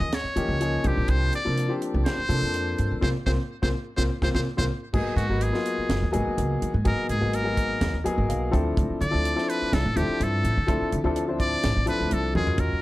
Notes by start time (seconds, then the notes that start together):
Already playing: D#5
0.00 D#2
0.13 C#5, snare, closed hi-hat
0.24 muted upright bass stroke
0.36 D#3 F3 A#3 C#4 D#4 G4, closed hi-hat
0.48 C#2
0.61 F3 A#3 C#4 D#4 G#4, closed hi-hat
0.84 C2 F3 A#3 C4 D4 G4, kick, closed hi-hat
0.97 A#1
1.08 C2 C5, kick, closed hi-hat
1.33 D5, closed hi-hat
1.45 C3 F3 A#3 C4 D4 A#4
1.58 closed hi-hat
1.69 F3 A#3 C4 D4 G4
1.82 closed hi-hat
1.94 C2
2.05 C5, snare, closed hi-hat
2.18 muted upright bass stroke
2.29 C3 F3 A#3 C4 D4 A4, closed hi-hat
2.42 F2
2.54 closed hi-hat
2.79 G2, closed hi-hat
2.91 A#1
3.01 C2 A#3 C4 F4 C5, kick, snare
3.26 C2 A#3 C4 F4 C5, kick, snare
3.62 C2 A#3 C4 F4 C5, kick, snare
3.97 C2 A#3 C4 F4 C5, kick, snare
4.22 C2 A#3 C4 F4 C5, kick, snare
4.34 C2 A#3 C4 F4 C5, kick, snare
4.57 C2 A#3 C4 F4 C5, kick, snare
4.93 G#1 F#3 A#3 B3 D#4 G#4, kick, crash
5.05 muted upright bass stroke
5.16 G#2 F#4, closed hi-hat
5.29 G#1 F#3 A#3 B3 D#4 B4
5.41 G#4, closed hi-hat
5.53 F#3 A#3 B3 D#4 F4, snare
5.66 closed hi-hat
5.78 muted upright bass stroke
5.89 F#1, snare, closed hi-hat
6.02 D#2
6.12 G#1 F#3 A#3 B3 D#4 G#4, closed hi-hat
6.28 muted upright bass stroke
6.38 C#2, closed hi-hat
6.62 D#2, closed hi-hat
6.74 G#2
6.84 G#1 F#3 A#3 B3 D#4 G#4 A#4, kick, closed hi-hat
6.98 muted upright bass stroke
7.09 G#2 G#4, closed hi-hat
7.21 G#1 F#3 A#3 B3 D#4 G#4
7.33 A#4, closed hi-hat
7.44 F#3 A#3 B3 D#4 G#4
7.57 kick, closed hi-hat
7.81 D#2, snare, closed hi-hat
7.93 D#2
8.04 F#3 A#3 B3 D#4 G#4 D#5, muted upright bass stroke, closed hi-hat
8.18 G#1
8.29 B1 F5, closed hi-hat
8.51 D2 F3 C4 D4 E4 A4 G5, kick, closed hi-hat
8.77 D2, kick, closed hi-hat
8.90 muted upright bass stroke
9.01 D3 D5, closed hi-hat
9.11 D2 F3 C4 D4 E4 A4
9.25 closed hi-hat
9.36 F3 C4 D4 E4 A4, snare
9.49 B4, closed hi-hat
9.62 muted upright bass stroke
9.73 C2 A4, snare, closed hi-hat
9.86 A1
9.96 D2 F3 C4 D4 E4 G4 A4, closed hi-hat
10.09 muted upright bass stroke
10.20 G2 A4, closed hi-hat
10.44 A1, closed hi-hat
10.57 D3
10.67 D2 F3 C4 D4 E4 A4, kick, closed hi-hat
10.82 muted upright bass stroke
10.92 D3, closed hi-hat
11.04 D2 F3 C4 D4 E4 A4
11.16 closed hi-hat
11.28 F3 C4 D4 E4 C5
11.40 D5, kick, closed hi-hat
11.64 A1, snare, closed hi-hat
11.77 A1
11.86 F3 C4 D4 E4 A4 B4, muted upright bass stroke, closed hi-hat
12.01 D2
12.11 C2 A4, closed hi-hat
12.34 D#2 F#3 C#4 D#4 F4 G#4 A#4, high tom
12.47 floor tom
12.58 D#2 A#4, kick, closed hi-hat
12.73 muted upright bass stroke